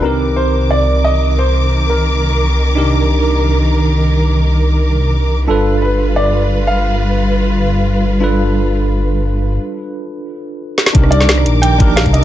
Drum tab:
HH |----------------|----------------|----------------|----------------|
SD |----------------|----------------|----------------|----------------|
BD |----------------|----------------|----------------|----------------|

HH |----------------|----------------|----------------|----------------|
SD |----------------|----------------|----------------|--------------oo|
BD |----------------|----------------|----------------|----------------|

HH |x-x-x-x-x-x-xxx-|
SD |-r-oor------o---|
BD |o---------o--o--|